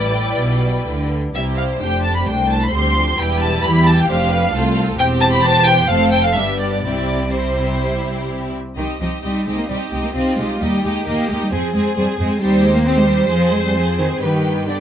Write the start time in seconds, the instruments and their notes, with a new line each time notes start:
Already playing: double bass section A1, cello section A2, viola section G3 E4, violin section B4 D5 G5
0.39 double bass section B1, cello section B2
0.87 double bass section D2, cello section D3
1.35 double bass section C2, cello section C3, viola section G3 E4, violin section G4 C5 E5
1.58 violin section F5
1.80 double bass section F1, cello section F2, viola section A3 D4, violin section G4 G5
2.04 violin section A5
2.16 violin section B5
2.27 cello section C2, double bass section C2, violin section C5 G5
2.50 violin section A5
2.63 violin section B5
2.72 cello section D2, double bass section D2, viola section G3 C4, violin section G4 C6
2.95 viola section F3
3.18 double bass section E1, cello section E2, viola section G3 E4, violin section G4 B4 G5
3.41 violin section A5
3.63 double bass section E2, cello section E3, violin section G4 B5
3.86 violin section A5
3.98 violin section G5
4.09 double bass section F1, cello section F2, viola section A3 D4, violin section C5 F5
4.32 violin section B4
4.54 double bass section C2, cello section C2, viola section A3 C4, violin section F4 A4
4.98 double bass section E1, cello section E2, viola section C4, violin section G4 C5 G5
5.21 violin section A5
5.32 violin section B5
5.43 viola section B3, violin section A5
5.66 violin section G5
5.88 double bass section F1, cello section F2, viola section A3 C4, violin section A4 C5 F5
6.11 violin section G5
6.24 violin section F5
6.36 double bass section G1, cello section G2, viola section G3 B3, violin section D4 G4 E5
6.60 violin section D5
6.72 violin section D5
6.84 double bass section C2, cello section C3, viola section G3 C4, violin section E4 G4 D5
7.32 viola section G3 C4, violin section E4 G4 C5
8.76 double bass section C2, cello section D#3, viola section C4 D#4, violin section G4 D#5
9.00 double bass section C2, cello section F3, viola section C4 D#4, violin section G4 D#5
9.22 double bass section C2, cello section G3, viola section C4 D#4, violin section G4 D#5
9.46 double bass section C2, cello section G#3, viola section C4 D#4, violin section G4 D#5
9.58 cello section A#3
9.68 double bass section C2, cello section G3, viola section C4 D#4, violin section G4 D#5
9.91 double bass section C2, cello section G#3, viola section C4 D#4, violin section G4 D#5
10.03 cello section A#3
10.14 double bass section C2, cello section C4, viola section C4 D#4, violin section F4 G4 D#5
10.37 double bass section C2, cello section G#3, viola section C4 D#4, violin section G4 D#5
10.60 double bass section D#2, cello section G3, viola section A#3 D#4, violin section G4 D#5
10.83 double bass section D#2, cello section G#3, viola section A#3 D#4, violin section G4 D#5
11.06 double bass section D#2, cello section A#3, viola section A#3 D#4, violin section G4 D#5
11.29 double bass section D#2, cello section G#3, viola section A#3 D#4, violin section G4 D#5
11.41 cello section G3
11.52 double bass section F2, cello section F3, viola section C4 G#4, violin section G#4 C5
11.74 double bass section F2, cello section G#3, viola section C4 G#4, violin section G#4 C5
11.97 double bass section F2, cello section G3, viola section C4 G#4, violin section G#4 C5
12.18 double bass section F2, cello section G#3, viola section C4 G#4, violin section G#4 C5
12.40 double bass section D#2, cello section G3, viola section C4 D#4, violin section G4 C5
12.63 cello section G#3
12.74 cello section A#3
12.86 cello section C4, viola section C4 D#4, violin section G4 C5
12.96 cello section G#3
13.08 cello section G3
13.30 double bass section F2, cello section F3, viola section C4 G#4, violin section G#4 C5
13.53 cello section G#3
13.65 cello section G3
13.75 cello section F3, viola section C4 G#4, violin section G#4 C5
13.99 cello section D#3
14.21 double bass section G2, cello section D#3, viola section B3 G4, violin section G4 B4 G5
14.68 cello section D3, viola section B3 G4, violin section G4 D5 G5